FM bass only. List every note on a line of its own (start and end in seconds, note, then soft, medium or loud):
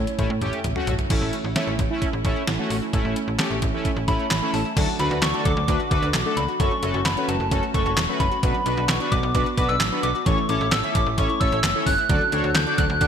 0.19 0.29 A1 loud
0.30 0.41 A2 loud
0.42 0.52 A1 loud
0.64 0.75 A1 medium
0.87 0.98 A1 loud
1.10 1.21 A1 loud
1.22 1.32 A1 medium
1.44 1.55 A1 loud
1.67 1.78 A1 medium
1.79 1.89 A1 loud
2.13 2.24 A1 loud
2.25 2.35 A1 loud
2.47 2.58 A1 loud
2.70 2.81 A1 loud
2.93 3.04 A1 loud
3.05 3.15 A1 medium
3.28 3.38 A1 medium
3.51 3.61 A1 medium
3.62 3.73 A1 loud
3.96 4.07 A1 loud
4.08 4.18 A1 loud
4.31 4.41 A1 medium
4.54 4.64 A1 medium
4.77 4.87 D2 loud
5.00 5.10 D2 loud
5.11 5.21 D2 loud
5.22 5.33 D2 loud
5.45 5.56 D2 loud
5.57 5.67 D2 loud
5.68 5.79 D2 loud
5.91 6.02 D2 loud
6.03 6.13 D2 loud
6.14 6.24 B1 loud
6.37 6.47 C#2 medium
6.60 6.70 F#1 loud
6.83 6.93 F#1 loud
6.94 7.05 F#1 loud
7.06 7.16 F#1 loud
7.29 7.39 F#1 loud
7.40 7.50 F#1 loud
7.52 7.62 F#1 loud
7.74 7.85 F#1 loud
7.86 7.96 F#1 loud
7.97 8.08 E1 medium
8.20 8.31 F#1 medium
8.43 8.54 B1 loud
8.66 8.76 B1 loud
8.77 8.88 B1 loud
8.89 8.99 B1 loud
9.12 9.22 B1 loud
9.23 9.34 B1 loud
9.35 9.45 B1 loud
9.58 9.68 B1 medium
9.69 9.80 B1 loud
9.81 9.91 A1 medium
10.03 10.14 B1 medium
10.26 10.37 A1 loud
10.49 10.60 A1 loud
10.61 10.71 A1 loud
10.72 10.83 A1 loud
10.95 11.06 A1 loud
11.06 11.17 A1 loud
11.18 11.28 A1 loud
11.41 11.51 A1 loud
11.52 11.63 A1 loud
11.64 11.74 F#1 medium
11.86 11.97 G1 medium
12.09 12.20 D2 loud
12.32 12.43 D2 loud
12.44 12.54 D2 loud
12.55 12.66 D2 loud
12.78 12.89 D2 loud
12.90 13.00 D2 loud
13.01 13.07 D2 loud